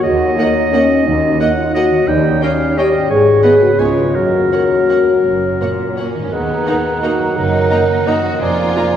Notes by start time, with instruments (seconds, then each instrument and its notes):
Already playing: harp D#3 A#3 D#4
0.00 bassoon F#3, harp F#4, french horn section F#4, oboe D#5, flute section D#5
0.04 cello section D#2, double bass section D#2
0.38 viola section A#3, french horn section D#4, violin section D#5 F#5
0.72 viola section A#3, french horn section C#4, violin section D#5 F#5
1.07 double bass section D#2, cello section D#2, french horn section D#4
1.40 viola section A#3, violin section D#5 F#5, oboe F#5
1.58 french horn section F4
1.74 viola section A#3, french horn section F#4, oboe D#5, violin section D#5 F#5
1.90 harp D#3
1.95 harp C#4
2.00 harp D#4
2.04 french horn section D#4, harp G4, oboe G5
2.08 double bass section D#2, cello section D#2, bassoon G3, flute section C#5
2.42 french horn section C#4, viola section C#4, violin section D#5 G5, oboe F5
2.77 viola section C#4, french horn section G4, violin section D#5 G5, oboe D#5
2.92 harp G#2
2.97 harp B3
3.02 harp D#4
3.07 double bass section G#1, cello section G#2, bassoon F#3, harp F#4, french horn section G#4, flute section B4, oboe C#5
3.43 viola section B3, oboe B4, violin section D#5 F#5
3.62 harp C#3, french horn section F#4
3.66 harp B3
3.71 harp C#4
3.75 harp G#4, violin section G#5
3.79 double bass section C#2, cello section C#3, bassoon G#3, viola section B3, french horn section F4, oboe C#5, violin section C#5
3.98 harp F#2
4.03 harp A#3
4.07 harp C#4
4.11 cello section F#2, bassoon F#3, harp F#4, oboe A#4
4.15 double bass section F#1, french horn section F#4, flute section A#4
4.51 cello section D#2, viola section A#3, violin section C#5 F#5
4.89 cello section C#2, viola section A#3, violin section C#5 F#5
5.24 double bass section F#1, cello section F#2
5.61 cello section A#2, viola section A#3, violin section C#5 F#5
5.97 viola section A#3, violin section C#4 C#5 F#5, clarinet A#4
6.14 cello section G#2, harp D#3
6.19 harp A#3
6.23 harp D#4
6.28 harp F#4
6.32 double bass section D#2, cello section D#2, bassoon D#3, violin section B3, clarinet G#4, oboe F#5, flute section A#5
6.66 french horn section F#3 D#4, viola section A#3 D#4, violin section F#5 A#5
7.02 french horn section F#3 D#4, viola section A#3 D#4, violin section A#3 F#5 A#5, clarinet F#4
7.19 harp F#2
7.23 harp A#3
7.28 harp D#4
7.32 harp F#4
7.37 double bass section F#1, cello section F#2, violin section D#4, clarinet A#4
7.70 french horn section F#3 D#4, viola section A#3 D#4, violin section F#5 A#5
8.06 french horn section F#3 D#4, viola section A#3 D#4, violin section F#4 F#5 A#5, clarinet D#5
8.23 harp F2
8.28 harp A#3
8.33 harp F4
8.37 harp G#4
8.41 double bass section F1, cello section F2, bassoon F3, violin section F4, clarinet D5, oboe G#5, flute section A#5
8.75 french horn section G#3 A#3, viola section A#3 F4, violin section G#5 A#5